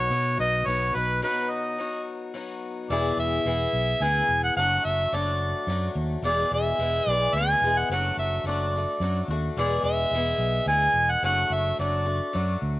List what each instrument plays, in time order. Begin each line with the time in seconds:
Already playing: steel-string acoustic guitar B2 B3 D#4 F#4, harmonica C#5
0.10 fingered electric bass B2, steel-string acoustic guitar F#3 B3 D#4 F#4
0.37 fingered electric bass B1, steel-string acoustic guitar B3 D#4 F#4, harmonica D#5
0.66 fingered electric bass B1, steel-string acoustic guitar F#3 B3 D#4 F#4, harmonica C#5
0.94 fingered electric bass B1, steel-string acoustic guitar B3 D#4 F#4, harmonica B4
1.22 steel-string acoustic guitar B2 F#3 B3 D#4 F#4, harmonica B4
1.50 harmonica D#5
1.78 steel-string acoustic guitar F#3 B3 D#4 F#4
2.34 steel-string acoustic guitar F#3 B3 D#4 F#4
2.90 fingered electric bass E1, steel-string acoustic guitar E2 B2 E3 B3 E4 G#4, harmonica D5
3.17 fingered electric bass E1, harmonica E5
3.45 fingered electric bass E1, steel-string acoustic guitar E3 B3 E4 G#4
3.73 fingered electric bass B1
4.00 fingered electric bass D2, steel-string acoustic guitar E3 B3 E4 G#4, harmonica G#5
4.28 fingered electric bass E1
4.44 harmonica F#5
4.57 fingered electric bass F#1, steel-string acoustic guitar F#3 A3 D4 F#4, harmonica F#5
4.85 fingered electric bass F#1, harmonica E5
5.13 fingered electric bass F#1, steel-string acoustic guitar F#3 A3 D4 F#4, harmonica D5
5.67 fingered electric bass F#2, steel-string acoustic guitar F#3 A3 D4
5.71 steel-string acoustic guitar F#4
5.95 fingered electric bass D#2
6.22 fingered electric bass E1, steel-string acoustic guitar E2 B2 E3 G#3 B3 G#4, harmonica D5
6.51 fingered electric bass E1, harmonica E5
6.79 fingered electric bass E1, steel-string acoustic guitar E3 G#3 B3 G#4
7.07 fingered electric bass B1, steel-string acoustic guitar E3 G#3 B3 G#4, harmonica D5
7.33 fingered electric bass D2, steel-string acoustic guitar E3 G#3, harmonica G#5
7.38 steel-string acoustic guitar B3 G#4
7.61 fingered electric bass E1, steel-string acoustic guitar B3 G#4
7.67 steel-string acoustic guitar E3 G#3
7.78 harmonica F#5
7.90 fingered electric bass F#1, steel-string acoustic guitar F#3 A3 D4, harmonica F#5
7.94 steel-string acoustic guitar F#4
8.17 fingered electric bass F#1, harmonica E5
8.44 fingered electric bass F#1, steel-string acoustic guitar F#3 A3 D4, harmonica D5
8.49 steel-string acoustic guitar F#4
8.75 steel-string acoustic guitar A3 D4 F#4
9.00 fingered electric bass F#2, steel-string acoustic guitar F#3 A3 D4 F#4
9.28 fingered electric bass D#2, steel-string acoustic guitar A3 D4 F#4
9.57 fingered electric bass E1, steel-string acoustic guitar E2 B2 E3 G#3 B3 G#4, harmonica D5
9.83 fingered electric bass E1, harmonica E5
10.11 fingered electric bass E1, steel-string acoustic guitar E3 G#3
10.15 steel-string acoustic guitar B3 G#4
10.38 fingered electric bass B1
10.66 fingered electric bass D2, steel-string acoustic guitar E3 G#3 B3 G#4, harmonica G#5
10.94 fingered electric bass E1
11.11 harmonica F#5
11.22 fingered electric bass F#1, steel-string acoustic guitar F#3 A3 D4 F#4, harmonica F#5
11.50 fingered electric bass F#1, harmonica E5
11.79 fingered electric bass F#1, steel-string acoustic guitar F#3 A3 D4 F#4, harmonica D5
12.06 steel-string acoustic guitar A3 D4 F#4
12.33 fingered electric bass F#2, steel-string acoustic guitar F#3 A3 D4 F#4
12.62 fingered electric bass D2